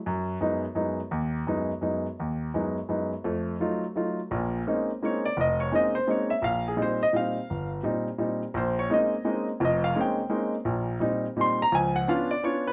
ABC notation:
X:1
M:3/4
L:1/8
Q:"Swing" 1/4=170
K:G#phr
V:1 name="Grand piano"
z6 | z6 | z6 | z6 |
[K:Bbdor] z4 d =d | e d e c d =e | f A c e f2- | f z4 z |
c d e3 z | e f g3 z | z4 c' b | a _g f =d _d _c |]
V:2 name="Grand piano"
F,,2 [F,,G,B,D] z [F,,G,B,D] z | D,,2 [F,,G,B,D] z [F,,G,B,D] z | D,,2 [F,,G,B,D] z [F,,G,B,D] z | [=F,,A,]2 [_G,A,_E=F] z [G,A,EF] z |
[K:Bbdor] [B,,,B,,]2 [A,B,CDE] z [A,B,CDE] z | F,,,2 [A,B,CDE] z [A,B,CDE] z | B,,,2 [B,,G,CE] z [B,,G,CE] z | G,,,2 [B,,G,CE] z [B,,G,CE] z |
B,,,2 [A,B,CDE] z [A,B,CDE] z | [F,,,F,,]2 [A,B,CDE] z [A,B,CDE] z | [B,,,B,,]2 [B,,G,CE] z [B,,G,CE] z | [D,,F,]2 [_CD=DF] z [C_D=DF] z |]